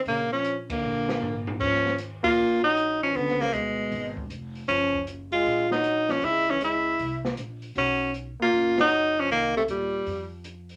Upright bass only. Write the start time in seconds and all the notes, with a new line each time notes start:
0.06 A#1
0.83 A#1
1.60 D#2
2.38 A#1
3.15 C#2
3.54 D2
3.91 G#1
4.30 F1
4.69 F#1
5.45 A#1
6.22 C#2
6.99 C2
7.38 A#1
7.76 B1
8.40 muted upright bass stroke
8.53 F#1
9.30 C2
9.68 D#2
10.06 F2